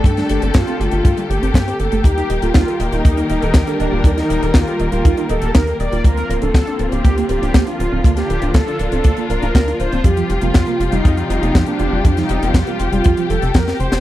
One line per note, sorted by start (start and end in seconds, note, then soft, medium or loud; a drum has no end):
0.00 2.01 D3 medium
0.00 2.01 A3 medium
0.00 10.01 A#3 medium
0.00 0.12 D4 loud
0.00 6.01 G4 medium
0.00 2.01 A4 loud
0.04 0.23 G2 loud
0.04 0.09 G3 medium
0.04 kick loud
0.04 closed hi-hat medium
0.17 0.28 G3 medium
0.17 0.51 D4 loud
0.17 snare soft
0.17 closed hi-hat medium
0.29 0.39 G1 medium
0.29 0.37 G4 medium
0.29 closed hi-hat medium
0.42 0.52 G1 loud
0.42 0.49 C4 medium
0.42 closed hi-hat medium
0.54 0.64 G2 loud
0.54 0.59 G3 medium
0.54 0.88 F4 loud
0.54 kick loud
0.54 snare loud
0.54 closed hi-hat loud
0.67 0.78 C4 medium
0.67 closed hi-hat medium
0.80 0.89 G1 medium
0.80 0.84 G4 medium
0.80 closed hi-hat medium
0.91 1.02 G1 loud
0.91 0.99 A3 loud
0.91 1.26 F4 loud
0.91 closed hi-hat medium
1.05 1.14 G2 medium
1.05 1.09 G3 medium
1.05 kick loud
1.05 closed hi-hat loud
1.17 1.28 G3 medium
1.17 closed hi-hat medium
1.30 1.39 G1 loud
1.30 1.52 G4 medium
1.30 1.37 G4 medium
1.30 closed hi-hat medium
1.42 1.52 G1 medium
1.42 1.49 C4 medium
1.42 closed hi-hat medium
1.54 1.74 G2 loud
1.54 1.59 G3 medium
1.54 1.77 G4 medium
1.54 kick loud
1.54 snare loud
1.54 closed hi-hat loud
1.68 1.78 C4 medium
1.68 closed hi-hat medium
1.80 1.89 G1 medium
1.80 1.84 G4 medium
1.80 2.02 A4 medium
1.80 closed hi-hat medium
1.92 2.02 G1 medium
1.92 1.99 A3 loud
1.92 closed hi-hat medium
2.04 2.23 D#2 loud
2.04 6.01 D#3 medium
2.04 6.01 G3 medium
2.04 2.09 D#4 medium
2.04 2.38 G4 loud
2.04 6.01 A#4 medium
2.04 kick loud
2.04 closed hi-hat loud
2.17 2.28 D#4 medium
2.17 closed hi-hat medium
2.30 2.39 D#1 loud
2.30 2.37 D#5 medium
2.30 closed hi-hat medium
2.42 2.52 D#1 loud
2.42 2.87 F4 loud
2.42 2.49 A4 medium
2.42 closed hi-hat medium
2.54 2.64 D#2 loud
2.54 2.59 D#4 medium
2.54 kick loud
2.54 snare loud
2.54 closed hi-hat medium
2.67 2.78 A4 medium
2.67 closed hi-hat medium
2.80 2.89 D#1 medium
2.80 2.84 D#5 medium
2.80 closed hi-hat medium
2.92 3.02 D#1 loud
2.92 3.26 D#4 loud
2.92 2.99 F4 loud
2.92 closed hi-hat medium
3.05 3.24 D#2 loud
3.05 3.09 D#4 medium
3.05 kick loud
3.05 closed hi-hat loud
3.17 3.28 D#4 medium
3.17 closed hi-hat medium
3.30 3.39 D#1 medium
3.30 3.63 D#4 medium
3.30 3.37 D#5 medium
3.30 closed hi-hat medium
3.42 3.52 D#1 medium
3.42 3.49 A4 medium
3.42 closed hi-hat medium
3.54 3.64 D#2 medium
3.54 3.59 D#4 medium
3.54 kick loud
3.54 snare loud
3.54 closed hi-hat loud
3.67 4.12 D4 loud
3.67 3.78 A4 medium
3.67 closed hi-hat medium
3.80 3.89 D#1 loud
3.80 3.84 D#5 medium
3.80 closed hi-hat medium
3.93 4.02 D#1 loud
3.93 3.99 F4 loud
4.04 4.23 D#2 loud
4.04 4.09 D#4 medium
4.04 kick loud
4.04 closed hi-hat medium
4.17 4.51 D#4 loud
4.17 4.28 D#4 medium
4.17 snare soft
4.17 closed hi-hat medium
4.30 4.39 D#1 loud
4.30 4.37 D#5 medium
4.30 closed hi-hat medium
4.43 4.52 D#1 loud
4.43 4.49 A4 medium
4.43 closed hi-hat medium
4.54 4.64 D#2 loud
4.54 4.59 D#4 medium
4.54 4.88 F4 loud
4.54 kick loud
4.54 snare loud
4.54 closed hi-hat loud
4.67 4.78 A4 medium
4.67 closed hi-hat medium
4.80 4.89 D#1 medium
4.80 4.84 D#5 medium
4.80 closed hi-hat medium
4.92 5.02 D#1 loud
4.92 4.99 F4 loud
4.92 5.26 F4 loud
4.92 closed hi-hat medium
5.05 5.14 D#2 medium
5.05 5.09 D#4 medium
5.05 kick loud
5.05 closed hi-hat loud
5.17 5.28 D#4 medium
5.17 closed hi-hat medium
5.29 5.39 D#1 loud
5.29 5.52 A4 medium
5.29 5.37 D#5 medium
5.29 closed hi-hat medium
5.42 5.52 D#1 medium
5.42 5.49 A4 medium
5.42 closed hi-hat medium
5.55 5.74 D#2 loud
5.55 5.59 D#4 medium
5.55 5.77 A#4 medium
5.55 kick loud
5.55 snare loud
5.55 closed hi-hat loud
5.67 5.78 A4 medium
5.67 closed hi-hat medium
5.80 5.89 D#1 medium
5.80 6.02 D5 medium
5.80 5.84 D#5 medium
5.80 closed hi-hat medium
5.92 6.02 D#1 medium
5.92 5.99 F4 loud
5.92 closed hi-hat medium
6.04 6.24 D2 loud
6.04 10.01 D3 medium
6.04 14.00 F3 medium
6.04 6.09 A#3 medium
6.04 8.03 C4 medium
6.04 14.00 F4 medium
6.04 6.38 A#4 loud
6.04 kick loud
6.04 closed hi-hat medium
6.17 6.28 A#3 medium
6.17 closed hi-hat medium
6.30 6.39 D1 medium
6.30 6.37 A#4 medium
6.30 closed hi-hat medium
6.42 6.52 D1 loud
6.42 6.49 D4 medium
6.42 6.87 A4 loud
6.42 closed hi-hat medium
6.54 6.64 D2 loud
6.54 6.59 A#3 medium
6.54 kick loud
6.54 snare loud
6.54 closed hi-hat medium
6.67 6.78 D4 medium
6.67 closed hi-hat medium
6.79 6.89 D1 medium
6.79 6.84 A#4 medium
6.79 closed hi-hat medium
6.92 7.02 D1 loud
6.92 6.99 C4 loud
6.92 7.26 G4 medium
6.92 closed hi-hat medium
7.05 7.24 D2 medium
7.05 7.09 A#3 medium
7.05 kick loud
7.05 closed hi-hat medium
7.18 7.28 A#3 medium
7.18 closed hi-hat medium
7.29 7.39 D1 medium
7.29 7.63 G4 loud
7.29 7.37 A#4 medium
7.29 closed hi-hat medium
7.42 7.52 D1 medium
7.42 7.49 D4 medium
7.42 closed hi-hat medium
7.54 7.64 D2 medium
7.54 7.59 A#3 medium
7.54 kick loud
7.54 snare loud
7.54 closed hi-hat loud
7.67 7.78 D4 medium
7.67 8.12 F4 loud
7.67 closed hi-hat medium
7.80 7.89 D1 loud
7.80 7.84 A#4 medium
7.80 closed hi-hat medium
7.92 8.02 D1 loud
7.92 7.99 C4 loud
8.04 8.24 D2 loud
8.04 8.09 A#3 medium
8.04 10.03 D4 medium
8.04 kick loud
8.04 closed hi-hat loud
8.17 8.28 A#3 medium
8.17 8.51 G4 loud
8.17 snare soft
8.17 closed hi-hat medium
8.30 8.39 D1 medium
8.30 8.37 A#4 medium
8.30 closed hi-hat medium
8.42 8.52 D1 loud
8.42 8.49 D4 medium
8.42 closed hi-hat soft
8.54 8.64 D2 loud
8.54 8.59 A#3 medium
8.54 8.88 A4 loud
8.54 kick loud
8.54 snare loud
8.54 closed hi-hat medium
8.68 8.78 D4 medium
8.68 closed hi-hat medium
8.79 8.89 D1 medium
8.79 8.84 A#4 medium
8.79 closed hi-hat medium
8.92 9.02 D1 loud
8.92 8.99 C4 loud
8.92 9.26 A4 loud
8.92 closed hi-hat medium
9.04 9.14 D2 medium
9.04 9.09 A#3 medium
9.04 kick loud
9.04 closed hi-hat loud
9.17 9.28 A#3 medium
9.17 closed hi-hat medium
9.30 9.39 D1 loud
9.30 9.52 A#4 medium
9.30 9.37 A#4 medium
9.30 closed hi-hat medium
9.42 9.52 D1 medium
9.42 9.49 D4 medium
9.42 closed hi-hat medium
9.55 9.74 D2 loud
9.55 9.59 A#3 medium
9.55 9.77 A#4 medium
9.55 kick loud
9.55 snare loud
9.55 closed hi-hat loud
9.68 9.78 D4 medium
9.68 closed hi-hat medium
9.80 9.89 D1 medium
9.80 9.84 A#4 medium
9.80 10.02 C5 medium
9.80 closed hi-hat medium
9.92 10.02 D1 medium
9.92 9.99 C4 loud
9.92 closed hi-hat soft
10.04 10.24 F2 loud
10.04 14.00 C3 medium
10.04 10.09 F3 medium
10.04 14.00 G3 medium
10.04 10.38 G4 loud
10.04 14.00 G4 loud
10.04 kick loud
10.04 closed hi-hat medium
10.17 10.28 F3 medium
10.17 closed hi-hat medium
10.30 10.39 F1 loud
10.30 10.37 F4 medium
10.30 closed hi-hat medium
10.41 10.52 F1 loud
10.41 10.49 A#3 medium
10.41 10.87 F4 loud
10.41 closed hi-hat medium
10.54 10.65 F2 loud
10.54 10.59 F3 medium
10.54 kick loud
10.54 snare loud
10.54 closed hi-hat loud
10.67 10.78 A#3 medium
10.67 closed hi-hat medium
10.80 10.89 F1 medium
10.80 10.84 F4 medium
10.80 closed hi-hat medium
10.92 11.02 F1 loud
10.92 10.99 G3 loud
10.92 11.26 D#4 loud
10.92 closed hi-hat medium
11.05 11.24 F2 medium
11.05 11.09 F3 medium
11.05 kick loud
11.05 closed hi-hat medium
11.17 11.28 F3 medium
11.17 closed hi-hat medium
11.30 11.39 F1 medium
11.30 11.63 D#4 loud
11.30 11.37 F4 medium
11.30 closed hi-hat medium
11.42 11.52 F1 medium
11.42 11.49 A#3 medium
11.42 closed hi-hat medium
11.55 11.64 F2 loud
11.55 11.59 F3 medium
11.55 kick loud
11.55 snare loud
11.55 closed hi-hat medium
11.66 11.78 A#3 medium
11.66 12.12 D4 loud
11.66 closed hi-hat medium
11.79 11.89 F1 loud
11.79 11.84 F4 medium
11.79 closed hi-hat medium
11.92 12.02 F1 loud
11.92 11.99 G3 loud
12.05 12.24 F2 loud
12.05 12.09 F3 medium
12.05 kick loud
12.05 closed hi-hat medium
12.17 12.28 F3 medium
12.17 12.51 D#4 loud
12.17 snare soft
12.17 closed hi-hat medium
12.29 12.39 F1 loud
12.29 12.37 F4 medium
12.29 closed hi-hat medium
12.42 12.52 F1 loud
12.42 12.49 A#3 medium
12.42 closed hi-hat medium
12.54 12.64 F2 loud
12.54 12.59 F3 medium
12.54 12.88 F4 medium
12.54 kick loud
12.54 snare loud
12.54 closed hi-hat loud
12.67 12.78 A#3 medium
12.67 closed hi-hat medium
12.80 12.89 F1 medium
12.80 12.84 F4 medium
12.80 closed hi-hat medium
12.92 13.02 F1 loud
12.92 12.99 G3 loud
12.92 13.26 F4 loud
12.92 closed hi-hat medium
13.04 13.15 F2 medium
13.04 13.09 F3 medium
13.04 kick loud
13.04 closed hi-hat medium
13.17 13.28 F3 medium
13.17 closed hi-hat medium
13.30 13.39 F1 loud
13.30 13.40 F2 loud
13.30 13.52 A4 medium
13.30 closed hi-hat medium
13.42 13.52 F1 medium
13.42 13.49 C3 medium
13.42 closed hi-hat medium
13.54 13.74 F2 medium
13.54 13.62 F3 medium
13.54 13.77 A#4 medium
13.54 kick loud
13.54 snare loud
13.54 closed hi-hat loud
13.68 13.74 C4 medium
13.68 snare medium
13.68 closed hi-hat medium
13.80 13.89 F1 medium
13.80 13.90 C3 medium
13.80 14.00 C5 medium
13.80 closed hi-hat medium
13.92 14.00 F1 medium
13.92 13.99 C4 medium
13.92 snare loud
13.92 closed hi-hat medium